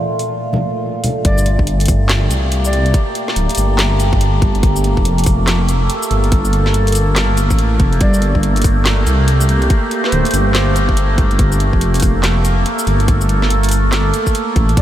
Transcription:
Already playing: A#2 A3 F4
0.19 open hi-hat
0.53 high conga, low conga
1.04 open hi-hat, low conga
1.25 G1 A3 A#3 G4 D5, kick, closed hi-hat
1.38 shaker
1.46 closed hi-hat
1.59 kick
1.67 closed hi-hat
1.80 closed hi-hat
1.86 kick, closed hi-hat, open hi-hat, shaker
2.09 snare, clap, closed hi-hat
2.31 C2, closed hi-hat, shaker
2.52 closed hi-hat
2.65 D5, shaker
2.73 closed hi-hat
2.86 closed hi-hat
2.94 kick, closed hi-hat
3.15 closed hi-hat
3.28 snare
3.36 D1, closed hi-hat
3.49 closed hi-hat
3.55 G1, closed hi-hat, open hi-hat, shaker
3.79 snare, clap, closed hi-hat
4.00 closed hi-hat, shaker
4.13 kick
4.21 closed hi-hat
4.42 kick, closed hi-hat
4.55 G1, closed hi-hat
4.63 A4, kick, closed hi-hat
4.76 shaker
4.84 closed hi-hat
4.97 F1, kick
5.05 closed hi-hat
5.18 closed hi-hat
5.24 kick, closed hi-hat, open hi-hat, shaker
5.47 snare, clap, closed hi-hat
5.69 closed hi-hat, shaker
5.90 closed hi-hat
6.03 shaker
6.11 G1, closed hi-hat
6.24 closed hi-hat
6.32 kick, closed hi-hat
6.45 shaker
6.53 closed hi-hat
6.66 snare
6.74 closed hi-hat
6.87 closed hi-hat
6.92 closed hi-hat, open hi-hat, shaker
7.16 snare, clap, closed hi-hat
7.37 closed hi-hat, shaker
7.50 A1, kick, shaker
7.59 closed hi-hat
7.80 F1, kick, closed hi-hat
7.93 closed hi-hat
8.01 G1 G4 D5, kick, closed hi-hat
8.14 shaker
8.22 closed hi-hat
8.35 kick
8.43 closed hi-hat
8.56 closed hi-hat
8.62 kick, closed hi-hat, open hi-hat, shaker
8.86 snare, clap, closed hi-hat
9.07 C2, closed hi-hat, shaker
9.28 closed hi-hat
9.41 shaker
9.49 closed hi-hat
9.62 closed hi-hat
9.70 kick, closed hi-hat
9.91 closed hi-hat
10.04 C5, snare
10.12 D1, closed hi-hat
10.25 closed hi-hat
10.31 G1, closed hi-hat, open hi-hat, shaker
10.47 C5
10.55 snare, clap, closed hi-hat
10.76 closed hi-hat, shaker
10.89 kick
10.97 closed hi-hat
11.18 kick, closed hi-hat
11.31 G1, closed hi-hat
11.39 A4, kick, closed hi-hat
11.52 shaker
11.60 closed hi-hat
11.73 F1, kick
11.81 closed hi-hat
11.94 closed hi-hat
12.00 kick, closed hi-hat, open hi-hat, shaker
12.24 snare, clap, closed hi-hat
12.45 closed hi-hat, shaker
12.66 closed hi-hat
12.79 shaker
12.87 G1, closed hi-hat
13.00 closed hi-hat
13.08 kick, closed hi-hat
13.21 shaker
13.29 closed hi-hat
13.42 snare
13.50 closed hi-hat
13.63 closed hi-hat
13.69 closed hi-hat, open hi-hat, shaker
13.92 snare, clap, closed hi-hat
14.14 closed hi-hat, shaker
14.27 kick, shaker
14.35 closed hi-hat
14.56 A1, kick, closed hi-hat
14.69 closed hi-hat
14.77 G1 D5, kick, closed hi-hat

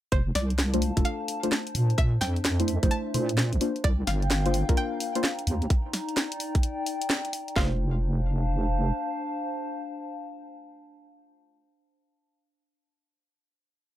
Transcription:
0.12 F1 D4 C5, kick, closed hi-hat
0.25 A5
0.30 C5
0.35 C2 D5, snare, open hi-hat
0.41 F5
0.50 closed hi-hat
0.59 snare
0.74 A3 D4 F4 C5, closed hi-hat
0.82 open hi-hat
0.97 F1 A3 D4 F4 A4, kick, closed hi-hat
1.05 F5, closed hi-hat
1.28 open hi-hat
1.43 A3 D4 F4 C5, closed hi-hat
1.52 snare
1.67 closed hi-hat
1.75 A#2, open hi-hat
1.90 closed hi-hat
1.98 E5, kick, closed hi-hat
2.21 F2 G5, snare, open hi-hat
2.28 E5
2.36 closed hi-hat
2.45 snare
2.60 A3 D4 E4 C5, closed hi-hat
2.68 open hi-hat
2.83 A#1 A3 D4 E4 C5, kick, closed hi-hat
2.91 A5, closed hi-hat
3.14 A#2 A3 D4 E4 C5, open hi-hat
3.29 closed hi-hat
3.38 snare
3.53 A#1, closed hi-hat
3.61 A#3 D4 F4 C5, open hi-hat
3.76 F5, closed hi-hat
3.84 C2 D5 G5, kick, closed hi-hat
4.07 G1 F5, snare, open hi-hat
4.22 closed hi-hat
4.31 A#5, snare
4.46 A#3 D4 F4 C5, closed hi-hat
4.54 open hi-hat
4.69 C2 A#3 D4 F4 A#4, kick, closed hi-hat
4.77 G5, closed hi-hat
5.00 open hi-hat
5.15 A#3 D4 F4 C5, closed hi-hat
5.24 snare
5.39 closed hi-hat
5.47 D#2 D#4, open hi-hat
5.62 D5, closed hi-hat
5.70 kick, closed hi-hat
5.93 snare, open hi-hat
6.00 G5
6.09 closed hi-hat
6.17 snare
6.32 closed hi-hat
6.40 open hi-hat
6.55 kick, closed hi-hat
6.63 closed hi-hat
6.86 open hi-hat
7.02 closed hi-hat
7.10 snare
7.25 closed hi-hat
7.33 open hi-hat
7.48 closed hi-hat
7.56 F1 A3 D4 F4 C5 F5, kick, snare
7.65 C5
7.73 F5
7.78 A5

